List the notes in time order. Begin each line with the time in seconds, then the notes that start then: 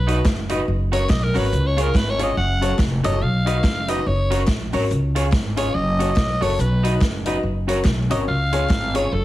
Already playing: B1 B4
0.07 D#4 F#4 B4 D#5, closed hi-hat
0.25 F#1, muted clean electric guitar stroke, kick, snare, clap
0.49 D#4 F#4 B4 D#5, closed hi-hat
0.68 F#1
0.92 C#4 F#4 A#4 C#5, closed hi-hat
1.09 B1 D#5, kick, snare, clap
1.24 A#4
1.34 G#1 C#4 F#4 A#4 B4 C#5, open hi-hat
1.52 C#2, hi-hat pedal
1.67 C#5
1.77 C#4 F4 G#4 C#5, closed hi-hat
1.82 A#4
1.94 G#1 B4, muted clean electric guitar stroke, kick, snare, clap
2.10 C#5
2.19 C#4 F4 G#4 C#5, closed hi-hat
2.24 D#5
2.37 F#1 F#5
2.61 C#4 F#4 A4 C#5, closed hi-hat
2.78 F1, kick, snare, clap
3.03 F#1 C#4 F#4 A4 C#5 D#5, closed hi-hat
3.22 B1 F5
3.45 D#4 F#4 B4 D#5, closed hi-hat
3.64 F#1, muted clean electric guitar stroke, kick, snare, clap
3.88 D#4 F#4 B4 D#5, closed hi-hat
4.06 F#1 C#5
4.30 C#4 F#4 A#4 C#5, closed hi-hat
4.47 A#1, kick, snare, clap
4.73 G#1 C#4 F#4 A#4 C#5, open hi-hat
4.90 C#2, hi-hat pedal
5.15 C#4 F4 G#4 C#5, closed hi-hat
5.32 G#1, muted clean electric guitar stroke, kick, snare, clap
5.56 C#4 F4 G#4 C#5, closed hi-hat
5.75 F#1 D#5
5.99 C#4 F#4 A4 C#5, closed hi-hat
6.16 B1, kick, snare, clap
6.41 F#1 C#4 F#4 A4 C#5, open hi-hat
6.59 B1 B4, hi-hat pedal
6.83 D#4 F#4 B4 D#5, closed hi-hat
7.01 F#1, muted clean electric guitar stroke, kick, snare, clap
7.25 D#4 F#4 B4 D#5, closed hi-hat
7.43 F#1
7.67 C#4 F#4 A#4 C#5, closed hi-hat
7.84 B1, muted clean electric guitar stroke, kick, snare, clap
8.09 G#1 C#4 F#4 A#4 C#5 D#5, closed hi-hat
8.28 C#2 F5
8.52 C#4 F4 G#4 C#5, closed hi-hat
8.69 G#1, muted clean electric guitar stroke, kick, snare, clap
8.94 C#4 F4 G#4 C#5, closed hi-hat
9.12 F#1 A4